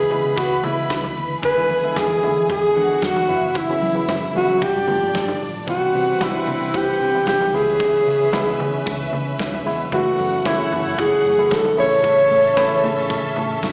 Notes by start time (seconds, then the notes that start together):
Already playing: C#3 E3 G#3 B3 E4 G#4 B4 B5
0.10 C#3 E3 G#3 B3 E4, open hi-hat, low conga
0.25 C#3
0.36 C#2 F#4, kick, closed hi-hat, muted conga
0.63 C#3 E3 G#3 B3 E4, open hi-hat, muted conga, low conga
0.89 C#2, kick, snare, closed hi-hat, high conga
1.04 high conga
1.17 D2, open hi-hat
1.42 E2 G#4 B4 G#5, kick, closed hi-hat, muted conga
1.56 D3 E3 G#3 B3 E4
1.69 E3, open hi-hat
1.83 D3 E3 G#3 B3 E4
1.96 E2 G#4, kick, snare, closed hi-hat, high conga
2.23 D3 E3 G#3 B3 E4, open hi-hat, low conga
2.37 E3
2.50 E2 G#4, kick, closed hi-hat, muted conga
2.76 D3 E3 G#3 B3 D4 F#4 F#5, open hi-hat
3.01 E2 F#4, kick, snare, closed hi-hat, high conga
3.16 high conga
3.28 F#2 C#3 E3 F#3 B3 E4 E5, open hi-hat
3.55 E4, kick, closed hi-hat, muted conga
3.69 C#3 E3 F#3 B3 C#4
3.81 F#3, open hi-hat
3.95 C#3 E3 F#3 B3 E4
4.08 F#2, kick, snare, closed hi-hat, high conga
4.34 C#3 E3 F#3 B3 C#4 F#4, open hi-hat, low conga
4.49 F#3
4.62 G1 D4 G4 D5, kick, closed hi-hat, muted conga
4.75 G2
4.87 G1 D3 F3 G3 A3 F4, open hi-hat, low conga
4.95 B3
5.02 G2
5.14 G2, kick, snare, closed hi-hat, high conga
5.28 high conga
5.42 A1, open hi-hat
5.67 C2 C3 E3 G3 B3 C4 E4 F#4 B4 F#5, kick, closed hi-hat, muted conga
5.93 C3 E3 G3 B3 G4, open hi-hat
6.20 C2 C3 E3 G3 B3 E4, kick, snare, closed hi-hat, high conga
6.33 C3 E3 G3 B3 D4
6.47 C3, open hi-hat, low conga
6.61 C3
6.74 C2 G4, kick, closed hi-hat, muted conga
7.00 C3, open hi-hat, muted conga
7.14 C3 E3 G3 B3 E4
7.26 C2 G4, kick, snare, closed hi-hat, high conga
7.41 high conga
7.53 C#2 C#3 E3 G#3 B3 C#4 E4 G#4 B4 E5, open hi-hat
7.80 kick, closed hi-hat, muted conga
8.05 C#3, open hi-hat
8.32 C#2 C#3 E3 G#3 B3 E4, kick, snare, closed hi-hat, high conga
8.60 C#3, open hi-hat, low conga
8.74 C#3
8.86 C#2, kick, closed hi-hat, muted conga
9.13 C#3, open hi-hat, low conga
9.38 C#2, kick, snare, closed hi-hat, high conga
9.54 high conga
9.65 E1 C#3 E3 G#3 B3 E4, snare, open hi-hat
9.92 F#1 C#3 E3 F#3 A3 C#4 E4 F#4 F#5, kick, closed hi-hat, muted conga
10.17 F#2 C#3 E3 F#3 A3 B3, open hi-hat
10.45 F#1 C#3 E3 F#3 A3 E4, kick, snare, closed hi-hat, high conga
10.58 C#3 E3 F#3 A3 E4
10.72 F#2, open hi-hat, low conga
10.86 F#2
10.98 F#1 G#4, kick, closed hi-hat, muted conga
11.25 F#2, open hi-hat, muted conga
11.37 C#3 E3 F#3 A3 E4
11.50 F#1 A4, kick, snare, closed hi-hat, high conga
11.65 high conga
11.77 A1 C#3 E3 A3 C#4 E4 G#4 A4 C#5 E5, open hi-hat
12.03 kick, closed hi-hat, muted conga
12.30 A2, open hi-hat
12.56 A1 C#3 E3 A3 E4 G#4, kick, snare, closed hi-hat, high conga
12.84 A2, open hi-hat, low conga
12.97 A2
13.10 A1, kick, closed hi-hat, muted conga
13.36 A2, open hi-hat, low conga
13.62 E2, kick, snare, closed hi-hat, high conga